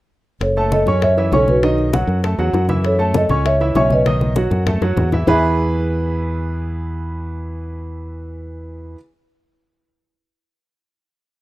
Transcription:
0.41 fingered electric bass F#1, marimba A4 C#5, high bongo, high conga
0.57 grand piano A3 A4 A5, high bongo, high conga
0.72 marimba A4 D#5, high bongo, high conga
0.86 fingered electric bass F#2, grand piano C#4 C#5 C#6, high bongo, low conga
1.02 marimba C#5 E5, high bongo, high conga, low conga
1.17 grand piano E3 E4 E5, high bongo, high conga
1.32 fingered electric bass B1, grand piano C#4 C#5 C#6, marimba A4 C#5, high bongo, low bongo, high conga
1.48 marimba F#4 B4, high conga
1.63 grand piano D#3 D#4 D#5, high bongo, high conga
1.78 high bongo, high conga
1.93 grand piano F#3 F#4 F#5, high bongo, high conga
2.07 fingered electric bass F#2, high bongo, high conga
2.24 grand piano A3 A4 A5, high bongo, high conga
2.38 fingered electric bass E2, grand piano F#3 F#4 F#5, high bongo, high conga
2.53 fingered electric bass F#2, high bongo, low bongo, high conga
2.69 grand piano E3 E4 E5, high conga
2.84 marimba A4 C#5, high bongo, high conga
2.99 grand piano A3 A4 A5, high bongo, high conga
3.14 marimba A4 D#5, high bongo, high conga
3.29 fingered electric bass C#2, grand piano C#4 C#5 C#6, high bongo, low conga
3.45 marimba C#5 E5, high bongo, high conga
3.60 grand piano E3 E4 E5, high bongo, high conga
3.75 fingered electric bass B1, grand piano C#4 C#5 C#6, marimba C#5 E5, high bongo, low bongo, high conga
3.90 marimba B4 D#5, high conga
4.06 grand piano D#3 D#4 D#5, high bongo, high conga
4.21 high bongo, high conga
4.36 grand piano F#3 F#4 F#5, high bongo, high conga
4.51 fingered electric bass F#2, high bongo, low conga
4.67 grand piano A3 A4 A5, high bongo, low conga
4.81 fingered electric bass F#2, grand piano F#3 F#4 F#5, high bongo
4.96 fingered electric bass E2, low bongo, low conga
5.12 grand piano E3 E4 E5, low bongo, low conga
5.27 fingered electric bass E2, grand piano E3 B3 E4 G#4 B4, marimba E5, low bongo, low conga

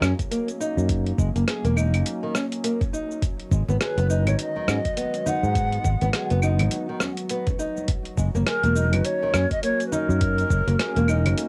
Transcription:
Already playing: ambient pad F#3 A#3 C#4 F#4 G#4
0.02 fretless electric bass F#2, nylon-string guitar C#4, cross-stick, claves, shaker
0.19 kick, closed hi-hat, shaker
0.31 nylon-string guitar A#3, closed hi-hat, shaker
0.48 closed hi-hat, shaker
0.60 nylon-string guitar D#4, shaker
0.77 fretless electric bass F#2, shaker
0.89 kick, closed hi-hat, shaker
1.06 closed hi-hat
1.18 fretless electric bass F#1, nylon-string guitar G#3, kick, shaker
1.36 fretless electric bass F#1, nylon-string guitar A#3, closed hi-hat, shaker
1.48 nylon-string guitar G#4, cross-stick, closed hi-hat, shaker
1.65 fretless electric bass E1, nylon-string guitar A#3, closed hi-hat, shaker
1.76 nylon-string guitar D#4, claves, shaker
1.94 fretless electric bass F#1, closed hi-hat, claves, shaker
2.06 closed hi-hat, shaker
2.23 nylon-string guitar D#3
2.35 nylon-string guitar C#4, cross-stick, shaker
2.52 closed hi-hat, shaker
2.64 nylon-string guitar A#3, closed hi-hat, shaker
2.81 kick, closed hi-hat, shaker
2.93 nylon-string guitar D#4, shaker
3.11 shaker
3.22 ambient pad D#3, kick, closed hi-hat, shaker
3.40 closed hi-hat
3.51 fretless electric bass G#1, nylon-string guitar G#3, kick, muted conga, shaker
3.69 fretless electric bass G#1, nylon-string guitar B3, low conga, shaker
3.81 ambient pad G#3, nylon-string guitar G#4, ney B4, cross-stick, closed hi-hat, shaker
3.98 fretless electric bass F#1, nylon-string guitar B3, closed hi-hat, shaker
4.10 nylon-string guitar D#4, shaker
4.27 fretless electric bass G#1, ney C#5, closed hi-hat, high conga, low conga, claves, shaker
4.32 ambient pad B3
4.39 ney D#5, closed hi-hat, shaker
4.56 nylon-string guitar D#3, high conga
4.68 fretless electric bass G#2, nylon-string guitar C#4, cross-stick, claves, shaker
4.85 kick, closed hi-hat, shaker
4.97 nylon-string guitar B3, closed hi-hat, shaker
5.14 closed hi-hat, shaker
5.26 nylon-string guitar D#4, ney F#5, low conga, shaker
5.43 fretless electric bass G#2, shaker
5.55 kick, closed hi-hat, shaker
5.72 closed hi-hat
5.84 fretless electric bass G#1, nylon-string guitar G#3, kick, muted conga, shaker
6.01 fretless electric bass G#1, nylon-string guitar B3, closed hi-hat, low conga, shaker
6.13 nylon-string guitar G#4, cross-stick, closed hi-hat, shaker
6.30 fretless electric bass F#1, nylon-string guitar B3, closed hi-hat, shaker
6.42 nylon-string guitar D#4, claves, shaker
6.59 fretless electric bass G#1, closed hi-hat, high conga, low conga, claves, shaker
6.71 closed hi-hat, muted conga, shaker
6.89 nylon-string guitar D#3
7.00 nylon-string guitar C#4, cross-stick, high conga, shaker
7.17 closed hi-hat, shaker
7.30 nylon-string guitar B3, closed hi-hat, shaker
7.47 kick, closed hi-hat, muted conga, high conga, shaker
7.59 nylon-string guitar D#4, muted conga, shaker
7.77 high conga, shaker
7.88 kick, closed hi-hat, shaker
8.05 closed hi-hat
8.18 fretless electric bass F#1, nylon-string guitar G#3, ambient pad A#3, kick, muted conga, shaker
8.35 fretless electric bass F#1, nylon-string guitar A#3, low conga, shaker
8.47 ambient pad C#4, nylon-string guitar G#4, ney A#4, cross-stick, closed hi-hat, shaker
8.63 fretless electric bass E1, nylon-string guitar A#3, closed hi-hat, shaker
8.75 nylon-string guitar D#4, shaker
8.93 fretless electric bass F#1, ney B4, closed hi-hat, high conga, low conga, claves, shaker
9.05 ney C#5, closed hi-hat, shaker
9.22 nylon-string guitar D#3, high conga
9.34 fretless electric bass F#2, nylon-string guitar C#4, cross-stick, muted conga, claves, shaker
9.51 ney D#5, kick, closed hi-hat, shaker
9.63 nylon-string guitar A#3, ney C#5, closed hi-hat, shaker
9.80 closed hi-hat, shaker
9.87 ney B4
9.92 nylon-string guitar D#4, ney A#4, low conga, shaker
10.09 fretless electric bass F#2, shaker
10.21 kick, closed hi-hat, shaker
10.38 closed hi-hat, shaker
10.50 fretless electric bass F#1, nylon-string guitar G#3, kick, muted conga, shaker
10.67 fretless electric bass F#1, nylon-string guitar A#3, closed hi-hat, low conga, shaker
10.79 nylon-string guitar G#4, cross-stick, closed hi-hat, shaker
10.96 fretless electric bass E1, nylon-string guitar A#3, closed hi-hat, shaker
11.08 nylon-string guitar D#4, claves, shaker
11.26 fretless electric bass F#1, closed hi-hat, high conga, low conga, claves, shaker
11.38 closed hi-hat, muted conga, shaker

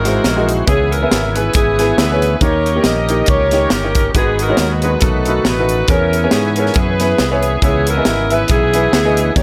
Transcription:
Already playing: fingered electric bass G#1, upright piano G#2, tonewheel organ E3 G#3 C4 F#4, saxophone section D#4 F#4 A#4
0.05 upright piano G#3 E4 F#4 C5, snare, closed hi-hat
0.24 fingered electric bass A#1, snare, closed hi-hat
0.36 upright piano G#3 E4 F#4 D#5
0.49 closed hi-hat
0.66 fingered electric bass C#2, upright piano C#3 B3 E4 G#4 C#5, tonewheel organ E3 B3 C#4 G4, saxophone section B3 E4 G#4, kick, closed hi-hat
0.72 tonewheel organ G#4
0.91 saxophone section E4 A#4, closed hi-hat
1.02 upright piano B3 E4 G#4 E5
1.11 fingered electric bass G#1, snare, closed hi-hat
1.34 upright piano B3 E4 G#4 B4, saxophone section B4, closed hi-hat
1.54 fingered electric bass G#1, saxophone section B3 E4 G#4, kick, closed hi-hat
1.79 upright piano B3 E4 G#4 B4, snare, closed hi-hat
1.96 fingered electric bass D2, saxophone section E4 G#4 B4, snare, closed hi-hat
2.11 upright piano B3 E4 G#4 C#5
2.22 closed hi-hat
2.41 fingered electric bass D#2, tonewheel organ D#3 A#3 C#4 G4, upright piano D#3 A#3 D#4 G4 C#5, saxophone section G4 A#4 C#5, kick, closed hi-hat
2.66 closed hi-hat
2.76 upright piano A#3 D#4 G4 A#4
2.83 fingered electric bass A#1, saxophone section G4 A#4 D#5, snare, closed hi-hat
3.09 upright piano A#3 D#4 G4 D#5, closed hi-hat
3.26 fingered electric bass C#2, saxophone section G4 A#4 C#5, kick, closed hi-hat
3.51 upright piano A#3 D#4 G4 C#5, snare, closed hi-hat
3.70 fingered electric bass G1, saxophone section C#4 G4 A#4, snare, closed hi-hat
3.84 upright piano A#3 D#4 G4 C#5
3.95 kick, closed hi-hat
4.14 fingered electric bass G#1, upright piano G#2 G#3 D#4 F#4 B4, tonewheel organ D#3 G#3 B3 F#4, saxophone section B3 D#4 G#4, kick, closed hi-hat
4.39 saxophone section D#4 F#4 A#4, closed hi-hat
4.49 upright piano G#3 D#4 F#4 C#5
4.57 fingered electric bass D#2, snare, closed hi-hat
4.81 upright piano G#3 D#4 F#4 B4, saxophone section B4, closed hi-hat
5.00 fingered electric bass B1, upright piano B2, tonewheel organ D#3 A3 B3 F#4, saxophone section D#4 F#4 A4, kick, closed hi-hat
5.25 upright piano A3 D#4 F#4 B4, closed hi-hat
5.45 fingered electric bass A1, saxophone section D#4 F#4 B4, snare, closed hi-hat
5.59 upright piano A3 D#4 F#4 B4
5.69 closed hi-hat
5.88 fingered electric bass E2, tonewheel organ E3 B3 C#4 G4, upright piano E3 B3 E4 G#4 C#5, saxophone section C#4 A#4, kick, closed hi-hat
5.95 tonewheel organ G#4
6.13 closed hi-hat
6.23 upright piano B3 E4 G#4 C#5
6.31 fingered electric bass G#2, saxophone section G#4, snare, closed hi-hat
6.56 upright piano B3 E4 G#4 C#5, saxophone section A#4, closed hi-hat
6.66 snare
6.74 fingered electric bass F#2, saxophone section G#4 B4, kick, closed hi-hat
7.00 upright piano B3 E4 G#4 B4, snare, closed hi-hat
7.18 fingered electric bass C2, snare, closed hi-hat
7.31 upright piano B3 E4 G#4 C#5
7.43 closed hi-hat
7.62 fingered electric bass C#2, upright piano C#3 B3 E4 G#4 C#5, tonewheel organ E3 B3 C#4 G#4, saxophone section B3 E4 G#4, kick, closed hi-hat
7.87 saxophone section E4 A#4, closed hi-hat
7.97 upright piano B3 E4 G#4 D#5
8.05 fingered electric bass G#1, snare, closed hi-hat
8.30 upright piano B3 E4 G#4 E5, saxophone section B4, closed hi-hat
8.48 fingered electric bass B1, saxophone section B3 E4 G#4, kick, closed hi-hat
8.74 upright piano B3 E4 G#4 B4, closed hi-hat
8.92 fingered electric bass D2, snare, closed hi-hat
9.05 upright piano B3 E4 G#4 D#5
9.17 closed hi-hat
9.35 fingered electric bass D#2, tonewheel organ D#3 A#3 C#4 G4, upright piano D#3 A#3 D#4 G4 C#5, saxophone section A#3 C#4 G4, kick, closed hi-hat

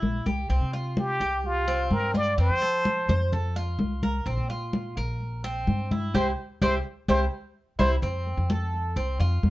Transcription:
Already playing: cuban tres E4
0.02 upright bass A#1, high conga
0.26 upright bass C2, cuban tres G4, high conga
0.49 upright bass C2, cuban tres C4, high conga
0.61 upright bass C3
0.73 cuban tres F4, high conga
0.97 muted trumpet G4, high conga
1.20 upright bass C2, cuban tres G4, high conga
1.44 muted trumpet F4, high conga
1.68 cuban tres C4, high conga
1.91 upright bass G2, muted trumpet A#4, high conga
2.14 cuban tres F4, muted trumpet D5, high conga
2.38 upright bass F2, cuban tres C4, muted trumpet C5, high conga
2.50 upright bass F3
2.62 cuban tres A4, high conga
2.85 high conga
3.08 upright bass F2, cuban tres C5, high conga, low conga
3.32 cuban tres A4, high conga, low conga
3.56 cuban tres F4, high conga
3.79 upright bass C2, high conga
4.03 cuban tres A#4, high conga
4.26 upright bass A#1, cuban tres C4, high conga
4.38 upright bass A#2
4.50 cuban tres F4, high conga
4.73 high conga
4.97 upright bass A#1, cuban tres A#4, high conga
5.20 high conga
5.44 cuban tres C4, high conga
5.67 upright bass G2, high conga
5.91 cuban tres E4, high conga
6.14 upright bass C2, cuban tres E4 G4 C5, muted trumpet C5, high conga
6.61 upright bass C2, cuban tres E4 G4 C5, muted trumpet C5, high conga
7.08 upright bass C2, cuban tres E4 G4 C5, muted trumpet C5, high conga
7.79 upright bass C2, cuban tres E4 G4 C5, muted trumpet C5, high conga
8.02 upright bass F2, cuban tres C4, high conga
8.27 high conga
8.38 upright bass F2
8.50 cuban tres A4, high conga
8.74 high conga
8.96 upright bass C2, cuban tres C4, high conga
9.20 upright bass F2, cuban tres F4, high conga
9.43 upright bass F2, high conga

